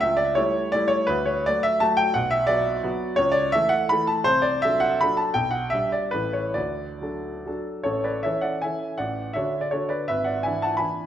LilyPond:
<<
  \new Staff \with { instrumentName = "Grand piano" } { \time 3/4 \key d \major \tempo 4 = 165 << { e''8 d''8 cis''4 d''8 cis''8 | b'8 cis''8 d''8 e''8 a''8 g''8 | fis''8 e''8 d''2 | cis''8 d''8 e''8 fis''8 b''8 a''8 |
c''8 d''8 e''8 fis''8 b''8 a''8 | g''8 fis''8 e''8 d''8 b'8 cis''8 | d''2~ d''8 r8 | \key a \major cis''8 d''8 e''8 fis''8 gis''4 |
fis''4 \tuplet 3/2 { e''4 d''8 } cis''8 d''8 | e''8 fis''8 gis''8 a''8 b''4 | } \\ { r2. | r2. | r2. | r2. |
r2. | r2. | r2. | a'8 b'8 cis''8 d''8 e''4 |
d''4 cis''8 r8 a'8 b'8 | b'8 d''8 e''8 fis''8 gis''4 | } >> }
  \new Staff \with { instrumentName = "Grand piano" } { \time 3/4 \key d \major cis,4 <g a e'>4 <g a e'>4 | d,4 <fis a fis'>4 <fis a fis'>4 | b,,4 <fis b fis'>4 <fis b fis'>4 | cis,4 <e a a'>4 <e a a'>4 |
c,4 <fis d' a'>4 <fis d' a'>4 | b,,4 <g d' g'>4 <a,, e e' a'>4 | d,4 <fis d' a'>4 <fis d' a'>4 | \key a \major a,,4 <e cis' a'>4 <e cis' a'>4 |
a,,4 <d d' fis'>4 <d d' fis'>4 | gis,,4 <e d' e'>4 <e d' e'>4 | }
>>